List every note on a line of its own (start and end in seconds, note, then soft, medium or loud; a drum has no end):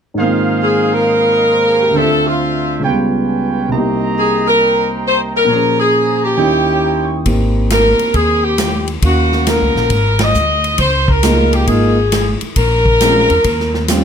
0.14 1.93 G#2 soft
0.14 1.95 D#3 soft
0.14 1.95 D#4 medium
0.14 1.06 G#4 medium
0.14 1.93 C5 medium
0.14 1.95 F5 medium
0.20 1.96 A#3 soft
0.20 1.94 C4 soft
0.25 1.99 F4 soft
0.63 0.91 G#4 medium
0.93 1.96 A#4 loud
1.07 1.96 G#4 medium
1.07 1.95 D#5 medium
1.35 1.60 D#5 soft
1.35 1.59 D#6 soft
1.51 1.79 C5 soft
1.51 1.78 C6 soft
1.65 1.89 G#4 soft
1.65 1.88 G#5 soft
1.80 2.04 G4 soft
1.80 2.03 G5 soft
1.90 2.81 D2 soft
1.90 2.83 D3 soft
1.94 2.84 C4 soft
1.94 2.84 D4 medium
1.94 2.26 A4 medium
1.94 2.84 C5 medium
1.94 2.84 E5 medium
1.94 2.85 E5 soft
2.01 2.86 F4 medium
2.26 2.85 F4 medium
2.79 3.70 C#2 soft
2.79 3.71 C#3 soft
2.84 3.73 B3 soft
2.84 3.72 F4 medium
2.84 3.74 F4 soft
2.84 3.72 B4 medium
2.84 3.73 C#5 medium
2.84 3.72 G5 medium
2.90 3.76 G3 soft
3.28 3.62 G#5 soft
3.50 3.81 B5 soft
3.68 5.47 C2 soft
3.68 5.49 C3 soft
3.68 5.49 G4 medium
3.68 4.59 C5 medium
3.68 5.49 D#5 medium
3.68 5.48 A#5 medium
3.73 5.50 A#3 soft
3.73 5.51 D#4 soft
3.79 5.53 G4 soft
4.18 4.45 G#4 medium
4.48 4.88 A#4 medium
4.61 5.47 C5 medium
4.61 5.49 G5 medium
5.07 5.20 C5 medium
5.37 5.77 A#4 medium
5.45 6.36 A#2 soft
5.45 6.37 F3 soft
5.45 6.37 C5 medium
5.45 6.36 C#5 medium
5.49 6.38 G#4 medium
5.49 6.38 C5 soft
5.49 6.38 A#5 medium
5.53 6.37 C#4 soft
5.53 6.41 G#4 soft
5.80 6.20 G#4 medium
6.24 7.12 G4 medium
6.37 7.26 D#2 soft
6.37 7.26 D#3 soft
6.37 7.26 C#4 soft
6.37 7.26 E4 medium
6.37 7.26 E4 soft
6.37 7.26 G4 medium
6.37 7.26 C#5 medium
6.37 7.26 D#5 medium
6.37 7.26 G5 medium
6.81 7.02 A#5 soft
6.92 7.12 C6 soft
7.04 7.18 C#6 soft
7.14 7.30 D#6 soft
7.26 7.96 G#1 medium
7.26 8.50 A#3 soft
7.26 8.50 C4 soft
7.26 8.50 D#4 soft
7.26 8.50 G4 soft
7.26 kick soft
7.26 ride medium
7.70 8.12 A#4 medium
7.70 snare medium
7.70 hi-hat pedal medium
7.70 ride medium
7.99 muted upright bass stroke soft
7.99 ride soft
8.14 8.99 D#2 medium
8.14 8.44 G#4 medium
8.14 kick soft
8.14 ride soft
8.44 8.88 G4 medium
8.58 snare medium
8.58 hi-hat pedal medium
8.58 ride medium
8.88 ride soft
9.02 9.58 D#2 medium
9.02 9.91 A#3 soft
9.02 9.91 C#4 soft
9.02 9.92 F#4 soft
9.02 9.45 F#4 medium
9.02 9.92 F5 soft
9.02 kick soft
9.02 ride medium
9.32 snare soft
9.47 10.21 A#4 medium
9.47 snare medium
9.47 hi-hat pedal medium
9.47 ride medium
9.62 9.75 C#2 soft
9.75 9.90 A#1 medium
9.75 snare soft
9.90 10.32 G#1 medium
9.90 kick soft
9.90 ride soft
10.19 10.80 D#5 medium
10.19 snare medium
10.19 ride medium
10.34 10.76 D2 medium
10.34 hi-hat pedal soft
10.64 ride soft
10.78 11.63 C#2 medium
10.78 11.07 C5 medium
10.78 kick soft
10.78 ride medium
11.08 11.54 A#4 medium
11.08 kick soft
11.23 11.67 G#3 soft
11.23 11.67 A#3 soft
11.23 11.67 D#4 soft
11.23 11.67 F4 medium
11.23 snare medium
11.23 hi-hat pedal medium
11.23 ride medium
11.53 11.68 G4 medium
11.53 ride soft
11.67 12.37 G#1 medium
11.67 11.95 G#3 medium
11.67 11.95 A#3 medium
11.67 11.95 D#4 medium
11.67 11.95 F4 medium
11.67 12.38 G#4 medium
11.67 kick soft
11.67 ride soft
12.12 snare medium
12.12 hi-hat pedal soft
12.12 ride medium
12.41 muted upright bass stroke soft
12.41 ride soft
12.56 13.26 A#1 medium
12.56 13.85 A#4 loud
12.56 kick soft
12.56 ride medium
12.86 kick soft
13.01 13.28 G#3 soft
13.01 13.28 C4 soft
13.01 13.28 C#4 soft
13.01 13.28 F4 medium
13.01 snare medium
13.01 hi-hat pedal medium
13.01 ride medium
13.30 13.44 E2 medium
13.30 ride soft
13.44 14.04 D#2 medium
13.44 kick soft
13.44 ride medium
13.60 snare soft
13.74 snare soft
13.88 14.04 G3 soft
13.88 14.04 C4 soft
13.88 14.04 C#4 soft
13.88 14.04 F4 medium
13.88 snare medium
13.88 hi-hat pedal medium
13.88 ride medium